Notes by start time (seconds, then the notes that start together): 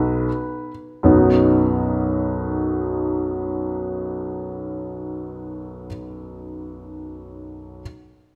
Already playing: B1 B4
1.03 B1 F#2 F#3 B3 D#4 F#4